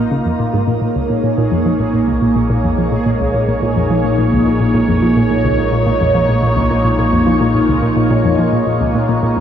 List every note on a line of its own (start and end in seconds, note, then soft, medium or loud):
0.00 0.65 A#1 medium
0.00 0.69 A#3 medium
0.00 9.40 A#3 medium
0.00 0.70 D#4 medium
0.00 0.64 F4 medium
0.00 0.67 A#4 medium
0.12 0.22 C#3 medium
0.26 0.32 F2 medium
0.40 0.50 A#2 medium
0.54 0.67 G#2 medium
0.67 9.40 A#1 medium
0.67 0.74 A#2 medium
0.67 9.40 G#3 medium
0.67 9.40 D#4 medium
0.67 5.19 G#4 medium
0.67 9.40 C#5 medium
0.81 0.88 A#2 medium
0.95 1.09 C#2 medium
1.10 1.22 A#2 medium
1.24 1.37 A#2 medium
1.38 1.51 A#2 loud
1.52 1.65 F2 medium
1.66 1.72 F3 medium
1.80 1.86 A#2 medium
1.94 2.00 A#2 medium
2.08 2.21 C#2 medium
2.22 2.35 A#2 medium
2.36 2.49 A#2 medium
2.50 2.63 A#2 loud
2.64 2.77 F2 medium
2.78 2.84 F3 medium
2.92 2.98 A#2 medium
3.06 3.12 A#2 medium
3.20 3.33 C#2 medium
3.34 3.47 A#2 medium
3.48 3.61 A#2 medium
3.62 3.75 A#2 loud
3.76 3.90 F2 medium
3.90 3.96 F3 medium
4.04 4.10 A#2 medium
4.18 4.24 A#2 medium
4.32 4.46 C#2 medium
4.46 4.59 A#2 medium
4.61 4.73 A#2 medium
4.75 4.88 A#2 loud
4.89 5.02 F2 medium
5.02 5.08 F3 medium
5.16 5.22 A#2 medium
5.16 9.40 F4 medium
5.31 5.36 A#2 medium
5.45 5.58 C#2 medium
5.59 5.71 A#2 medium
5.72 5.85 A#2 medium
5.87 6.00 A#2 loud
6.01 6.14 F2 medium
6.15 6.21 F3 medium
6.29 6.35 A#2 medium
6.43 6.49 A#2 medium
6.57 6.70 C#2 medium
6.71 6.83 A#2 medium
6.85 6.97 A#2 medium
6.99 7.12 A#2 medium
7.12 7.26 F2 medium
7.27 7.33 F3 medium
7.41 7.47 A#2 medium
7.55 7.61 A#2 medium
7.69 7.82 C#2 medium
7.83 7.95 A#2 medium
7.97 8.09 A#2 medium
8.11 8.24 A#2 medium
8.25 8.38 F2 medium
8.39 8.45 F3 medium
8.53 8.59 A#2 medium
8.67 8.73 A#2 medium
8.81 8.94 C#2 medium
8.95 9.08 A#2 medium
9.09 9.22 A#2 medium
9.23 9.36 A#2 medium
9.37 9.40 F2 medium